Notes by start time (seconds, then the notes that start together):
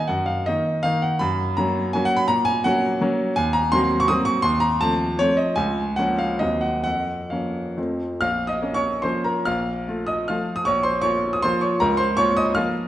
0.07 F#2 F#5
0.26 F5
0.46 D#3 A#3 D#4 D#5
0.83 D#3 A#3 D#4 F5
1.02 F#5
1.19 F#2 B5
1.57 F#3 A#3 C#4 A#5
1.93 F#3 A#3 C#4 G#5
2.05 F#5
2.17 B5
2.28 A#2 A#5
2.45 G#5
2.64 F#3 A#3 C#4 F#5
3.01 F#3 A#3 C#4
3.36 D#2 G#5
3.53 A#5
3.72 F#3 A#3 C4 C6
4.00 C#6
4.08 F#3 A#3 C4 D#6
4.25 C#6
4.42 D#2 C6
4.60 A#5
4.81 F3 A3 C4 A5
5.19 F3 A3 C4 C#5
5.37 D#5
5.56 C#2 G#5
5.96 F3 A#3 C#4 F#5
6.19 F5
6.39 D#2 F#3 A#3 C4 D#5
6.61 F#5
6.84 F2 F#5
7.30 F3 A#3 C#4 F5
7.77 F2 F3 A3 C4
8.21 A#1 F5 F6
8.47 D#5 D#6
8.62 A#3 C#4
8.74 C#5 C#6
9.02 F3 A#3 C#4 C5 C6
9.24 A#4 A#5
9.45 A#1 F5 F6
9.88 A3 F4
10.07 D#5 D#6
10.28 F3 A3 F4 F5 F6
10.56 D#6
10.65 A#1 C#5 C#6
10.83 C5 C6
11.02 A#3 F4 C#5 C#6
11.33 D#6
11.42 F3 A#3 F4 C5 C6
11.61 C#5 C#6
11.80 C#2 A#4 A#5
11.97 C5 C6
12.17 A#3 F4 C#5 C#6
12.37 D#5 D#6
12.55 F3 A#3 F4 F5 F6